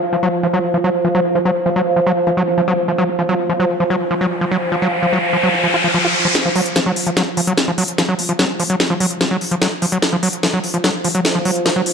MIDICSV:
0, 0, Header, 1, 5, 480
1, 0, Start_track
1, 0, Tempo, 408163
1, 1709, Time_signature, 4, 2, 24, 8
1, 14034, End_track
2, 0, Start_track
2, 0, Title_t, "Acid bass"
2, 0, Program_c, 0, 38
2, 149, Note_on_c, 0, 53, 74
2, 194, Note_off_c, 0, 53, 0
2, 269, Note_on_c, 0, 54, 102
2, 336, Note_off_c, 0, 54, 0
2, 509, Note_on_c, 0, 53, 79
2, 554, Note_off_c, 0, 53, 0
2, 629, Note_on_c, 0, 54, 98
2, 696, Note_off_c, 0, 54, 0
2, 869, Note_on_c, 0, 53, 73
2, 914, Note_off_c, 0, 53, 0
2, 989, Note_on_c, 0, 54, 105
2, 1056, Note_off_c, 0, 54, 0
2, 1228, Note_on_c, 0, 53, 87
2, 1273, Note_off_c, 0, 53, 0
2, 1349, Note_on_c, 0, 54, 97
2, 1416, Note_off_c, 0, 54, 0
2, 1588, Note_on_c, 0, 53, 79
2, 1634, Note_off_c, 0, 53, 0
2, 1709, Note_on_c, 0, 54, 96
2, 1776, Note_off_c, 0, 54, 0
2, 1949, Note_on_c, 0, 53, 79
2, 1994, Note_off_c, 0, 53, 0
2, 2068, Note_on_c, 0, 54, 101
2, 2136, Note_off_c, 0, 54, 0
2, 2308, Note_on_c, 0, 53, 75
2, 2354, Note_off_c, 0, 53, 0
2, 2429, Note_on_c, 0, 54, 104
2, 2496, Note_off_c, 0, 54, 0
2, 2668, Note_on_c, 0, 53, 81
2, 2714, Note_off_c, 0, 53, 0
2, 2789, Note_on_c, 0, 54, 104
2, 2856, Note_off_c, 0, 54, 0
2, 3029, Note_on_c, 0, 53, 72
2, 3074, Note_off_c, 0, 53, 0
2, 3149, Note_on_c, 0, 54, 106
2, 3216, Note_off_c, 0, 54, 0
2, 3389, Note_on_c, 0, 53, 73
2, 3434, Note_off_c, 0, 53, 0
2, 3509, Note_on_c, 0, 54, 106
2, 3576, Note_off_c, 0, 54, 0
2, 3749, Note_on_c, 0, 53, 74
2, 3794, Note_off_c, 0, 53, 0
2, 3869, Note_on_c, 0, 54, 109
2, 3936, Note_off_c, 0, 54, 0
2, 4109, Note_on_c, 0, 53, 84
2, 4154, Note_off_c, 0, 53, 0
2, 4229, Note_on_c, 0, 54, 98
2, 4296, Note_off_c, 0, 54, 0
2, 4469, Note_on_c, 0, 53, 80
2, 4514, Note_off_c, 0, 53, 0
2, 4589, Note_on_c, 0, 54, 99
2, 4656, Note_off_c, 0, 54, 0
2, 4829, Note_on_c, 0, 53, 77
2, 4874, Note_off_c, 0, 53, 0
2, 4949, Note_on_c, 0, 54, 93
2, 5016, Note_off_c, 0, 54, 0
2, 5189, Note_on_c, 0, 53, 76
2, 5234, Note_off_c, 0, 53, 0
2, 5309, Note_on_c, 0, 54, 101
2, 5376, Note_off_c, 0, 54, 0
2, 5549, Note_on_c, 0, 53, 81
2, 5594, Note_off_c, 0, 53, 0
2, 5669, Note_on_c, 0, 54, 98
2, 5737, Note_off_c, 0, 54, 0
2, 5909, Note_on_c, 0, 53, 78
2, 5954, Note_off_c, 0, 53, 0
2, 6029, Note_on_c, 0, 54, 102
2, 6097, Note_off_c, 0, 54, 0
2, 6270, Note_on_c, 0, 53, 78
2, 6314, Note_off_c, 0, 53, 0
2, 6389, Note_on_c, 0, 54, 103
2, 6457, Note_off_c, 0, 54, 0
2, 6630, Note_on_c, 0, 53, 73
2, 6674, Note_off_c, 0, 53, 0
2, 6749, Note_on_c, 0, 65, 77
2, 6776, Note_off_c, 0, 65, 0
2, 6870, Note_on_c, 0, 53, 75
2, 6914, Note_off_c, 0, 53, 0
2, 6989, Note_on_c, 0, 53, 98
2, 7034, Note_off_c, 0, 53, 0
2, 7109, Note_on_c, 0, 65, 74
2, 7136, Note_off_c, 0, 65, 0
2, 7349, Note_on_c, 0, 53, 105
2, 7376, Note_off_c, 0, 53, 0
2, 7589, Note_on_c, 0, 53, 75
2, 7634, Note_off_c, 0, 53, 0
2, 7709, Note_on_c, 0, 54, 107
2, 7777, Note_off_c, 0, 54, 0
2, 7949, Note_on_c, 0, 53, 85
2, 7994, Note_off_c, 0, 53, 0
2, 8069, Note_on_c, 0, 54, 97
2, 8136, Note_off_c, 0, 54, 0
2, 8309, Note_on_c, 0, 53, 75
2, 8354, Note_off_c, 0, 53, 0
2, 8429, Note_on_c, 0, 54, 97
2, 8496, Note_off_c, 0, 54, 0
2, 8669, Note_on_c, 0, 53, 78
2, 8714, Note_off_c, 0, 53, 0
2, 8789, Note_on_c, 0, 54, 98
2, 8856, Note_off_c, 0, 54, 0
2, 9029, Note_on_c, 0, 53, 71
2, 9074, Note_off_c, 0, 53, 0
2, 9149, Note_on_c, 0, 54, 99
2, 9217, Note_off_c, 0, 54, 0
2, 9389, Note_on_c, 0, 53, 79
2, 9434, Note_off_c, 0, 53, 0
2, 9509, Note_on_c, 0, 54, 94
2, 9576, Note_off_c, 0, 54, 0
2, 9749, Note_on_c, 0, 53, 75
2, 9794, Note_off_c, 0, 53, 0
2, 9869, Note_on_c, 0, 54, 106
2, 9936, Note_off_c, 0, 54, 0
2, 10109, Note_on_c, 0, 53, 78
2, 10154, Note_off_c, 0, 53, 0
2, 10229, Note_on_c, 0, 54, 99
2, 10296, Note_off_c, 0, 54, 0
2, 10468, Note_on_c, 0, 53, 73
2, 10514, Note_off_c, 0, 53, 0
2, 10588, Note_on_c, 0, 54, 107
2, 10656, Note_off_c, 0, 54, 0
2, 10829, Note_on_c, 0, 53, 83
2, 10874, Note_off_c, 0, 53, 0
2, 10949, Note_on_c, 0, 54, 99
2, 11016, Note_off_c, 0, 54, 0
2, 11188, Note_on_c, 0, 53, 80
2, 11234, Note_off_c, 0, 53, 0
2, 11309, Note_on_c, 0, 54, 98
2, 11376, Note_off_c, 0, 54, 0
2, 11549, Note_on_c, 0, 53, 81
2, 11594, Note_off_c, 0, 53, 0
2, 11669, Note_on_c, 0, 54, 101
2, 11736, Note_off_c, 0, 54, 0
2, 11908, Note_on_c, 0, 53, 78
2, 11954, Note_off_c, 0, 53, 0
2, 12028, Note_on_c, 0, 54, 108
2, 12096, Note_off_c, 0, 54, 0
2, 12269, Note_on_c, 0, 53, 81
2, 12314, Note_off_c, 0, 53, 0
2, 12389, Note_on_c, 0, 54, 104
2, 12456, Note_off_c, 0, 54, 0
2, 12629, Note_on_c, 0, 53, 73
2, 12674, Note_off_c, 0, 53, 0
2, 12749, Note_on_c, 0, 54, 104
2, 12816, Note_off_c, 0, 54, 0
2, 12989, Note_on_c, 0, 53, 75
2, 13034, Note_off_c, 0, 53, 0
2, 13109, Note_on_c, 0, 54, 100
2, 13176, Note_off_c, 0, 54, 0
2, 13349, Note_on_c, 0, 53, 76
2, 13394, Note_off_c, 0, 53, 0
2, 13469, Note_on_c, 0, 54, 105
2, 13536, Note_off_c, 0, 54, 0
2, 13709, Note_on_c, 0, 53, 83
2, 13754, Note_off_c, 0, 53, 0
2, 13829, Note_on_c, 0, 54, 97
2, 13896, Note_off_c, 0, 54, 0
2, 14034, End_track
3, 0, Start_track
3, 0, Title_t, "Synth texture"
3, 0, Program_c, 1, 99
3, 0, Note_on_c, 1, 53, 73
3, 7455, Note_off_c, 1, 53, 0
3, 7469, Note_on_c, 1, 53, 76
3, 14034, Note_off_c, 1, 53, 0
3, 14034, End_track
4, 0, Start_track
4, 0, Title_t, "Riser"
4, 0, Program_c, 2, 103
4, 3629, Note_on_c, 2, 60, 77
4, 7469, Note_off_c, 2, 60, 0
4, 14034, End_track
5, 0, Start_track
5, 0, Title_t, "Drums"
5, 7469, Note_on_c, 9, 38, 46
5, 7469, Note_on_c, 9, 42, 68
5, 7586, Note_off_c, 9, 38, 0
5, 7586, Note_off_c, 9, 42, 0
5, 7709, Note_on_c, 9, 46, 106
5, 7826, Note_off_c, 9, 46, 0
5, 7829, Note_on_c, 9, 42, 66
5, 7946, Note_off_c, 9, 42, 0
5, 7949, Note_on_c, 9, 38, 48
5, 7949, Note_on_c, 9, 42, 69
5, 8066, Note_off_c, 9, 38, 0
5, 8066, Note_off_c, 9, 42, 0
5, 8189, Note_on_c, 9, 46, 99
5, 8306, Note_off_c, 9, 46, 0
5, 8309, Note_on_c, 9, 42, 66
5, 8426, Note_off_c, 9, 42, 0
5, 8429, Note_on_c, 9, 38, 49
5, 8429, Note_on_c, 9, 42, 69
5, 8546, Note_off_c, 9, 38, 0
5, 8546, Note_off_c, 9, 42, 0
5, 8669, Note_on_c, 9, 46, 109
5, 8786, Note_off_c, 9, 46, 0
5, 8789, Note_on_c, 9, 42, 65
5, 8906, Note_off_c, 9, 42, 0
5, 8909, Note_on_c, 9, 38, 52
5, 8909, Note_on_c, 9, 42, 71
5, 9026, Note_off_c, 9, 38, 0
5, 9026, Note_off_c, 9, 42, 0
5, 9148, Note_on_c, 9, 46, 100
5, 9266, Note_off_c, 9, 46, 0
5, 9269, Note_on_c, 9, 42, 69
5, 9386, Note_off_c, 9, 42, 0
5, 9388, Note_on_c, 9, 38, 52
5, 9388, Note_on_c, 9, 42, 65
5, 9506, Note_off_c, 9, 38, 0
5, 9506, Note_off_c, 9, 42, 0
5, 9628, Note_on_c, 9, 46, 103
5, 9746, Note_off_c, 9, 46, 0
5, 9749, Note_on_c, 9, 42, 64
5, 9866, Note_off_c, 9, 42, 0
5, 9869, Note_on_c, 9, 38, 56
5, 9869, Note_on_c, 9, 42, 65
5, 9986, Note_off_c, 9, 38, 0
5, 9986, Note_off_c, 9, 42, 0
5, 10108, Note_on_c, 9, 46, 106
5, 10226, Note_off_c, 9, 46, 0
5, 10229, Note_on_c, 9, 42, 63
5, 10346, Note_off_c, 9, 42, 0
5, 10349, Note_on_c, 9, 38, 56
5, 10349, Note_on_c, 9, 42, 69
5, 10466, Note_off_c, 9, 38, 0
5, 10466, Note_off_c, 9, 42, 0
5, 10588, Note_on_c, 9, 46, 115
5, 10706, Note_off_c, 9, 46, 0
5, 10709, Note_on_c, 9, 42, 68
5, 10826, Note_off_c, 9, 42, 0
5, 10828, Note_on_c, 9, 38, 56
5, 10828, Note_on_c, 9, 42, 68
5, 10946, Note_off_c, 9, 38, 0
5, 10946, Note_off_c, 9, 42, 0
5, 11068, Note_on_c, 9, 46, 106
5, 11186, Note_off_c, 9, 46, 0
5, 11188, Note_on_c, 9, 42, 66
5, 11306, Note_off_c, 9, 42, 0
5, 11308, Note_on_c, 9, 38, 56
5, 11308, Note_on_c, 9, 42, 65
5, 11426, Note_off_c, 9, 38, 0
5, 11426, Note_off_c, 9, 42, 0
5, 11548, Note_on_c, 9, 46, 106
5, 11666, Note_off_c, 9, 46, 0
5, 11669, Note_on_c, 9, 42, 64
5, 11786, Note_off_c, 9, 42, 0
5, 11789, Note_on_c, 9, 38, 61
5, 11789, Note_on_c, 9, 42, 63
5, 11906, Note_off_c, 9, 38, 0
5, 11906, Note_off_c, 9, 42, 0
5, 12029, Note_on_c, 9, 46, 111
5, 12146, Note_off_c, 9, 46, 0
5, 12149, Note_on_c, 9, 42, 65
5, 12266, Note_off_c, 9, 42, 0
5, 12269, Note_on_c, 9, 38, 63
5, 12269, Note_on_c, 9, 42, 68
5, 12386, Note_off_c, 9, 38, 0
5, 12386, Note_off_c, 9, 42, 0
5, 12509, Note_on_c, 9, 46, 107
5, 12626, Note_off_c, 9, 46, 0
5, 12629, Note_on_c, 9, 42, 62
5, 12746, Note_off_c, 9, 42, 0
5, 12749, Note_on_c, 9, 38, 61
5, 12749, Note_on_c, 9, 42, 67
5, 12866, Note_off_c, 9, 38, 0
5, 12866, Note_off_c, 9, 42, 0
5, 12989, Note_on_c, 9, 46, 111
5, 13106, Note_off_c, 9, 46, 0
5, 13109, Note_on_c, 9, 42, 65
5, 13226, Note_off_c, 9, 42, 0
5, 13229, Note_on_c, 9, 38, 63
5, 13229, Note_on_c, 9, 42, 61
5, 13346, Note_off_c, 9, 38, 0
5, 13346, Note_off_c, 9, 42, 0
5, 13469, Note_on_c, 9, 46, 113
5, 13586, Note_off_c, 9, 46, 0
5, 13588, Note_on_c, 9, 42, 64
5, 13706, Note_off_c, 9, 42, 0
5, 13709, Note_on_c, 9, 38, 65
5, 13709, Note_on_c, 9, 42, 63
5, 13826, Note_off_c, 9, 38, 0
5, 13826, Note_off_c, 9, 42, 0
5, 13949, Note_on_c, 9, 46, 110
5, 14034, Note_off_c, 9, 46, 0
5, 14034, End_track
0, 0, End_of_file